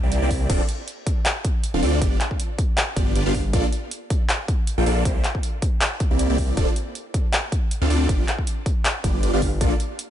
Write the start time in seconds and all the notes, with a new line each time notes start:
0.03 C2 A#3 C4 E4 G4 D5
0.12 closed hi-hat
0.22 C2 A#3 C4 E4 G4 D5
0.31 kick, open hi-hat
0.50 D1 C4 D4 F4 A4 D5, kick, closed hi-hat, crash
0.69 closed hi-hat
0.88 closed hi-hat
1.07 kick, closed hi-hat
1.26 clap, closed hi-hat
1.45 kick, closed hi-hat
1.64 closed hi-hat
1.74 D1 C4 D4 F4 A4 F5
1.82 D2 C4 D4 F4 A4 D5, open hi-hat
2.02 G1 B3 D4 F4 G4 D5, kick, closed hi-hat
2.21 clap, closed hi-hat
2.31 kick
2.40 closed hi-hat
2.59 kick, closed hi-hat
2.78 clap, closed hi-hat
2.96 G1 B3 D4 F4 G4 D5, kick, closed hi-hat
3.15 G1 B3 D4 F4 G4 D5, closed hi-hat
3.26 G1 B3 D4 F4 G4 F5
3.34 kick, open hi-hat
3.53 A#1 A#3 D4 F4 A4 D5, kick, closed hi-hat
3.73 closed hi-hat
3.91 closed hi-hat
4.10 kick, closed hi-hat
4.29 clap, closed hi-hat
4.48 kick, closed hi-hat
4.67 closed hi-hat
4.78 A#1 A#3 D4 F4 A4 G5
4.86 A#1 A#3 D4 F4 A4 D5, open hi-hat
5.05 C2 A#3 C4 E4 G4 C5, kick, closed hi-hat
5.24 clap, closed hi-hat
5.35 kick
5.43 closed hi-hat
5.62 kick, closed hi-hat
5.81 clap, closed hi-hat
6.00 kick, closed hi-hat
6.11 C2 A#3 C4 E4 G4 D5
6.19 closed hi-hat
6.30 C2 A#3 C4 E4 G4 D5
6.38 kick, open hi-hat
6.57 D1 C4 D4 F4 A4 D5, kick, closed hi-hat
6.76 closed hi-hat
6.95 closed hi-hat
7.14 kick, closed hi-hat
7.33 clap, closed hi-hat
7.52 kick, closed hi-hat
7.71 closed hi-hat
7.82 D2 C4 D4 F4 A4 F5
7.90 D2 C4 D4 F4 A4 D5, open hi-hat
8.09 G1 B3 D4 F4 G4 D5, kick, closed hi-hat
8.28 clap, closed hi-hat
8.38 kick
8.47 closed hi-hat
8.66 kick, closed hi-hat
8.85 clap, closed hi-hat
9.04 G1 B3 D4 F4 G4 D5, kick, closed hi-hat
9.23 G1 B3 D4 F4 G4 D5, closed hi-hat
9.33 G1 B3 D4 F4 G4 F5
9.42 kick, open hi-hat
9.61 A#1 A#3 D4 F4 A4 D5, kick, closed hi-hat
9.80 closed hi-hat
9.99 closed hi-hat